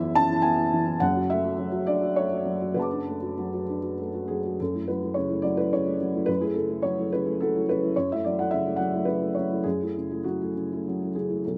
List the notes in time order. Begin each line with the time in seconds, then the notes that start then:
Already playing: F#1 F#2 E3 B3 E4 E5
0.03 E4
0.15 C#4 A5
0.31 E4
0.42 B3 G#5
0.58 E4
0.73 E3
0.86 E4
1.00 F#1 F#2 F#5
1.15 F#4
1.30 A3 E5
1.44 F#4
1.58 F#3
1.71 F#4
1.87 D4 D5
2.02 F#4
2.16 A3 C#5
2.32 F#4
2.45 F#3
2.61 F#4
2.74 F#1 F#2 B4 F#5
2.79 A5 D6
2.93 D4
3.08 A3
3.22 F#4
3.38 F#3
3.53 F#4
3.69 D4
3.82 F#4
4.00 A3
4.14 F#4
4.28 F#3 G#4
4.45 F#4
4.60 F#2 A4
4.74 A3 E4
4.88 F#3 B4
5.03 A3 E4
5.14 C#3 C#5
5.29 A3 E4
5.42 F#3 D5
5.57 A3 E4 B4
5.73 C#3 C#5
5.86 A3 E4
6.01 F#3
6.14 A3 E4
6.26 F#2 B4
6.40 A3 E4 G#4
6.54 C#3 A4
6.69 A3 E4
6.83 F#3 C#5
6.98 A3 E4
7.12 C#3 B4
7.25 A3 E4
7.40 F#3 A4
7.55 A3 E4
7.69 C#3 B4
7.83 A3 E4
7.96 F#2 C#5
8.12 A3 E4 E5
8.24 F#3 D5
8.39 A3 E4 F#5
8.51 C#3 E5
8.66 A3 E4
8.76 F#3 F#5
8.94 A3 E4
9.05 C#3 B4
9.20 A3 E4
9.35 F#3 C#5
9.51 A3 E4
9.64 F#2 G#4
9.82 A3 E4
9.97 C#3
10.11 A3 E4
10.24 F#3 F#4
10.42 A3 E4
10.55 C#3
10.72 A3 E4
10.87 F#3
11.03 A3 E4
11.15 C#3 G#4
11.30 A3 E4
11.45 B1 A4